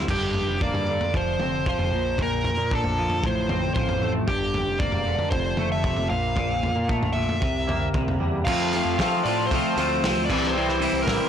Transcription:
0.08 picked electric bass G1, clean electric guitar G2, lead electric guitar G4, kick, floor tom, crash
0.34 floor tom
0.47 picked electric bass F1
0.61 clean electric guitar A#3, lead electric guitar D5, kick
0.73 picked electric bass G2, floor tom
0.89 clean electric guitar D3
1.01 floor tom
1.14 picked electric bass F1, clean electric guitar F3, lead electric guitar C5, kick
1.39 picked electric bass F1, clean electric guitar C4, floor tom, mid tom
1.66 clean electric guitar F3, lead electric guitar C5, kick
1.78 picked electric bass F1, floor tom
1.91 picked electric bass A#1, clean electric guitar A#2
2.18 clean electric guitar A#2, kick, floor tom
2.22 lead electric guitar A#4
2.44 floor tom
2.58 picked electric bass A#2
2.71 clean electric guitar D4, lead electric guitar A4, kick
2.84 picked electric bass A#1, floor tom
2.98 clean electric guitar F3
3.10 floor tom
3.23 picked electric bass A1, clean electric guitar A2, lead electric guitar C5, kick
3.49 clean electric guitar C4, floor tom, mid tom
3.74 picked electric bass A1, clean electric guitar F3, lead electric guitar C5, kick
3.89 floor tom
4.00 picked electric bass A1, clean electric guitar A3
4.27 picked electric bass G1, clean electric guitar G2, lead electric guitar G4, kick, floor tom
4.54 floor tom
4.65 picked electric bass F1
4.79 clean electric guitar A#3, lead electric guitar D5, kick
4.92 picked electric bass E1, floor tom
5.06 clean electric guitar D3
5.19 floor tom
5.30 picked electric bass F1, clean electric guitar F2, lead electric guitar C5, kick
5.57 picked electric bass F1, clean electric guitar A3, floor tom, mid tom
5.72 lead electric guitar E5
5.83 clean electric guitar C3, kick
5.97 picked electric bass F1, floor tom
6.10 picked electric bass A#1, clean electric guitar A#2, lead electric guitar F5
6.36 clean electric guitar A#2, kick, floor tom
6.63 floor tom
6.76 picked electric bass A#2
6.88 clean electric guitar A3, kick
7.02 picked electric bass A#1, floor tom
7.13 clean electric guitar A#2, lead electric guitar E5
7.29 floor tom
7.40 picked electric bass C2, clean electric guitar C3, kick
7.67 clean electric guitar A#3, floor tom, mid tom
7.94 picked electric bass C2, clean electric guitar C3, kick, mid tom
8.08 floor tom
8.20 picked electric bass E2, clean electric guitar G3
8.45 picked electric bass F2, clean electric guitar F3 A3 C4 F4, trumpet F4, lead electric guitar F5, kick, crash
8.73 clean electric guitar F3 A3 C4 F4, open hi-hat
8.85 picked electric bass F2
8.98 clean electric guitar F3 A3 C4 F4, picked electric bass F3, kick, snare, open hi-hat
9.22 picked electric bass A2, clean electric guitar F3 A3, trumpet D4, lead electric guitar D5, open hi-hat
9.26 clean electric guitar C4 F4
9.47 picked electric bass C2, trumpet C4, lead electric guitar C5
9.51 clean electric guitar F3 A3 C4 F4, kick, open hi-hat
9.76 picked electric bass D2, clean electric guitar F3 A3 C4 F4, open hi-hat
10.02 picked electric bass C2, clean electric guitar F3 A3 C4 F4, snare, open hi-hat
10.16 picked electric bass D2
10.25 trumpet D4, lead electric guitar D5
10.29 picked electric bass C2, clean electric guitar C3 E3 G3 C4 E4, kick, crash
10.43 snare
10.49 trumpet C4, lead electric guitar C5
10.55 clean electric guitar C3 E3 G3 C4 E4
10.69 snare
10.80 clean electric guitar C3 E3 G3 C4 E4, open hi-hat
10.93 picked electric bass C2
11.02 clean electric guitar C3, trumpet A#3, lead electric guitar A#4
11.07 picked electric bass A1, clean electric guitar E3 G3 C4 E4, kick, snare, open hi-hat

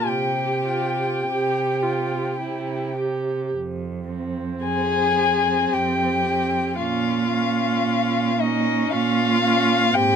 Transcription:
0.07 cello C3, violin G4 G5
0.66 viola F4
1.24 cello C3, viola G4
1.83 viola F4
2.40 cello C3, viola E4
2.97 viola G4
3.54 cello F2
4.09 viola C4
4.64 cello F2, violin G#4 G#5
5.19 viola C4
5.72 cello F2, violin G4 G5
6.26 viola C4
6.78 cello A#2, viola C#4, violin F4 F5
7.34 viola C#4
7.87 cello A#2
8.40 viola C#4, violin D#4 D#5
8.91 cello A#2, violin F4 F5
9.44 viola C#4
9.94 cello G#2, viola C4, violin G4 G5

